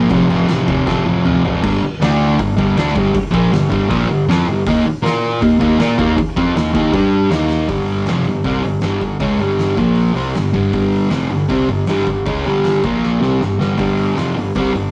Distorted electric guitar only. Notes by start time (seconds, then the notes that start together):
0.10 F2 C3 F3
0.28 F2 C3 F3
0.48 F2 C3 F3
0.67 F2 C3 F3
0.86 F2 C3 F3
1.05 F2 C3 F3
1.24 F2 C3 F3
1.44 F2 C3 F3
1.63 G2 D3 G3
1.82 muted distorted electric guitar stroke
2.01 D3 A3 D4
2.39 G2 D3
2.57 G2 D3 G3
2.77 D3 A3 D4
2.95 G2 D3 G3
3.14 muted distorted electric guitar stroke
3.31 A#2 F3 A#3
3.52 G2 D3
3.69 G2 D3 G3
3.88 A#2 F3 A#3
4.09 G2 D3
4.29 F3 C4 F4
4.48 G2 D3
4.67 D#3 A#3 D#4
4.87 muted distorted electric guitar stroke
5.03 A#3 F4 A#4
5.43 D#3 A#3
5.60 D#3 A#3 D#4
5.79 A#3 F4 A#4
5.98 D#3 A#3 D#4
6.17 muted distorted electric guitar stroke
6.36 F3 C4 F4
6.55 D#3 A#3
6.73 D#3 A#3 D#4
6.93 G3 D4 G4
7.30 D#3 A#3 D#4
7.68 G2 D3 G3
8.07 F2 C3 F3
8.27 G2 D3
8.44 C3 G3 C4
8.62 G2 D3
8.82 G2 D3 G3
8.99 G2 D3
9.20 C#3 G#3 C#4
9.39 G2 D3 G3
9.77 A#2 F3 A#3
10.13 C3 G3 C4
10.35 G2 D3
10.53 G2 D3 G3
10.73 G2 D3 G3
11.11 F2 C3 F3
11.31 G2 D3
11.49 C3 G3 C4
11.69 G2 D3
11.88 G2 D3 G3
12.09 G2 D3
12.25 C#3 G#3 C#4
12.45 G2 D3 G3
12.84 A#2 F3 A#3
13.20 C3 G3 C4
13.40 G2 D3
13.59 G2 D3 G3
13.77 G2 D3 G3
14.15 F2 C3 F3
14.35 G2 D3
14.56 C3 G3 C4
14.73 G2 D3